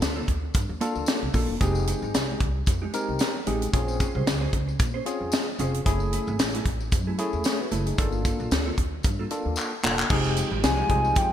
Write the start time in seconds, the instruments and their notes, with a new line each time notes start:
Already playing: tine electric piano A#3 D4 F4 A4
0.01 upright bass D2, muted clean electric guitar stroke, snare, closed hi-hat, tambourine
0.16 clean electric guitar A#3 F4 A4
0.28 upright bass D2, muted clean electric guitar stroke, kick, closed hi-hat
0.43 muted clean electric guitar stroke
0.54 upright bass G2, muted clean electric guitar stroke, kick, closed hi-hat, tambourine
0.69 upright bass D#2, muted clean electric guitar stroke
0.81 clean electric guitar A#3 F4 A#4, tine electric piano A#3 D4 F4 A4, closed hi-hat, tambourine
0.95 upright bass D2, clean electric guitar A#3 F4 A4, tambourine
1.06 snare, closed hi-hat, tambourine
1.22 upright bass C2, muted clean electric guitar stroke
1.34 upright bass A#1, clean electric guitar A#3 F4 A4, tine electric piano A#3 D4 F4 A4, kick, open hi-hat, tambourine
1.49 upright bass E1, muted clean electric guitar stroke
1.61 upright bass F1, clean electric guitar G#3 D#4 G4, tine electric piano C4 D#4 G4 G#4, kick, closed hi-hat, tambourine
1.75 tambourine
1.87 clean electric guitar G#3 D#4 G4, closed hi-hat, tambourine
2.02 upright bass G#1, clean electric guitar G#3 D#4 G4, tambourine
2.14 upright bass C2, muted clean electric guitar stroke, snare, closed hi-hat, tambourine
2.29 clean electric guitar G#3 D#4 G4
2.40 upright bass C2, muted clean electric guitar stroke, kick, closed hi-hat
2.56 muted clean electric guitar stroke
2.66 upright bass F2, muted clean electric guitar stroke, kick, closed hi-hat, tambourine
2.82 clean electric guitar G#3 D#4 G4
2.94 clean electric guitar G#3 D#4 G#4, tine electric piano C4 D#4 G4 A#4, closed hi-hat, tambourine
3.09 upright bass C2, muted clean electric guitar stroke
3.19 snare, closed hi-hat, tambourine
3.36 muted clean electric guitar stroke
3.46 upright bass A1, clean electric guitar G#3 D#4 G4, tine electric piano C4 D#4 G4 G#4, closed hi-hat, tambourine
3.62 muted clean electric guitar stroke, closed hi-hat, tambourine
3.73 upright bass A#1, tine electric piano C4 C#4 F4 G#4, clean electric guitar C#4 G#4 C5, kick, closed hi-hat, tambourine
3.88 tambourine
4.00 clean electric guitar C#4 G#4 C5, kick, closed hi-hat, tambourine
4.14 upright bass C2, clean electric guitar C#4 G#4 C5
4.26 upright bass C#2, muted clean electric guitar stroke, snare, closed hi-hat, tambourine
4.41 clean electric guitar C#4 G#4 C5
4.52 upright bass C#2, muted clean electric guitar stroke, kick, closed hi-hat
4.68 muted clean electric guitar stroke, tambourine
4.79 upright bass A#2, muted clean electric guitar stroke, kick, closed hi-hat, tambourine
4.94 clean electric guitar C#4 G#4 C5
5.06 tine electric piano C4 C#4 F4 G#4, clean electric guitar C#4 G#4 C#5, closed hi-hat, tambourine
5.21 upright bass F2, muted clean electric guitar stroke
5.32 snare, closed hi-hat, tambourine
5.48 muted clean electric guitar stroke
5.59 upright bass F1, tine electric piano C4 C#4 F4 G#4, clean electric guitar C#4 G#4 C5, closed hi-hat, tambourine
5.74 muted clean electric guitar stroke, closed hi-hat
5.85 upright bass F#1, tine electric piano A3 C#4 E4 G#4, clean electric guitar A3 E4 G#4, kick, closed hi-hat, tambourine
6.00 tambourine
6.13 clean electric guitar A3 E4 G#4, closed hi-hat, tambourine
6.27 upright bass G#1, clean electric guitar A3 E4 G#4, tambourine
6.39 upright bass A1, snare, closed hi-hat, tambourine
6.54 clean electric guitar A3 E4 G#4, closed hi-hat
6.66 upright bass A1, muted clean electric guitar stroke, kick, closed hi-hat
6.80 muted clean electric guitar stroke, tambourine
6.92 upright bass F#2, muted clean electric guitar stroke, kick, closed hi-hat, tambourine
7.07 clean electric guitar A3 E4 G#4
7.18 clean electric guitar A3 E4 A4, tine electric piano A3 C#4 E4 G#4, closed hi-hat, tambourine
7.33 upright bass E2, muted clean electric guitar stroke, tambourine
7.44 tine electric piano G#4 C#5, snare, closed hi-hat, tambourine
7.60 tine electric piano F#4 B4, muted clean electric guitar stroke
7.71 upright bass F#1, clean electric guitar A3 E4 G#4, tine electric piano E4 A4, closed hi-hat, tambourine
7.86 tine electric piano D#4 G#4, muted clean electric guitar stroke, closed hi-hat, tambourine
7.98 upright bass G1, tine electric piano A#3 D4 F4 A4, clean electric guitar A#3 F4 A4, kick, closed hi-hat, tambourine
8.12 tambourine
8.25 clean electric guitar A#3 F4 A4, kick, closed hi-hat, tambourine
8.39 upright bass A#1, clean electric guitar A#3 F4 A4, tambourine
8.51 upright bass D2, snare, closed hi-hat, tambourine
8.66 clean electric guitar A#3 F4 A4
8.78 upright bass D2, muted clean electric guitar stroke, kick, closed hi-hat
8.93 muted clean electric guitar stroke
9.03 upright bass G2, muted clean electric guitar stroke, kick, closed hi-hat, tambourine
9.19 clean electric guitar A#3 F4 A4
9.31 tine electric piano A#3 D4 F4 A4, clean electric guitar A#3 F4 A#4, closed hi-hat, tambourine
9.45 upright bass D#2, muted clean electric guitar stroke
9.56 clap, tambourine
9.72 muted clean electric guitar stroke
9.83 upright bass E1, tine electric piano A#3 D4 F4 A4, clean electric guitar A#3 F4 A4, clap, tambourine
9.99 muted clean electric guitar stroke, clap
10.10 upright bass F1, analog synth pad F3 G#3 D#4 F4, clean electric guitar G#3 D#4 G4, tine electric piano C4 D#4 G4 G#4, kick, crash, tambourine
10.24 tambourine
10.37 clean electric guitar G#3 D#4 G4, closed hi-hat, tambourine
10.51 upright bass G#1, clean electric guitar G#3 D#4 G4
10.63 upright bass C2, tine electric piano C4 D#4 G4 G#4, soft synth lead G#5, muted clean electric guitar stroke, snare, closed hi-hat, tambourine
10.78 clean electric guitar G#3 D#4 G4
10.89 upright bass C2, tine electric piano C4 D#4 G4 G#4, kick, closed hi-hat
11.05 muted clean electric guitar stroke, tambourine
11.15 upright bass F2, soft synth lead G5, muted clean electric guitar stroke, kick, closed hi-hat, tambourine